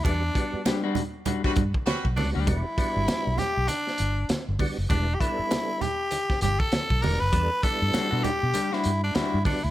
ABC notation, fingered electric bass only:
X:1
M:4/4
L:1/16
Q:"Swing 16ths" 1/4=99
K:Em
V:1 name="Fingered electric bass" clef=bass
E,,2 z8 G,, z2 B,,, ^C,, D,, | E,,, z2 G,,, z B,,, z B,,, z2 G,,,2 z G,,, z F,,, | E,,,2 z8 G,,, z2 B,,, E,,, F,,, | E,, z2 G,, z B,, z B,, z2 G,,2 z G,, z D,, |]